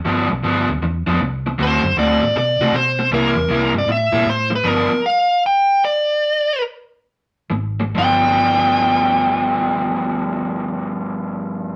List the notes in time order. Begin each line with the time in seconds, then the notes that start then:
0.05 G1 G2 F3 B3 D4
0.29 B1, muted overdriven electric guitar stroke
0.43 G1 G2 F3 B3 D4
0.68 D2, muted overdriven electric guitar stroke
0.81 E2, muted overdriven electric guitar stroke
1.06 F2 G2 F3 B3 D4
1.19 C2, muted overdriven electric guitar stroke
1.46 muted overdriven electric guitar stroke
1.58 D2 D3 A3 C4 F#4
1.63 C5
1.83 F#2, muted overdriven electric guitar stroke
1.97 D2 D3 A3 C4 F#4 D5
2.22 A2, muted overdriven electric guitar stroke
2.35 B2 D5, muted overdriven electric guitar stroke
2.59 C3 D3 A3 C4 F#4
2.71 B2, muted overdriven electric guitar stroke
2.76 C5
2.99 muted overdriven electric guitar stroke
3.10 C2 C3 G3 A#3 E4 A#4
3.35 E2, muted overdriven electric guitar stroke
3.48 C2 C3 G3 A#3 E4
3.73 G2, muted overdriven electric guitar stroke
3.78 D5
3.86 A2, muted overdriven electric guitar stroke
3.92 E5
4.12 A#2 C3 G3 A#3 E4
4.25 A2, muted overdriven electric guitar stroke
4.30 C5
4.50 muted overdriven electric guitar stroke
4.55 B4
4.64 G1 G2 F3 B3 D4
4.69 A#4
5.06 F5
5.46 G5
5.85 D5
7.50 G#1, muted overdriven electric guitar stroke
7.80 muted overdriven electric guitar stroke
7.95 G1 G2 F3 B3 D4 G5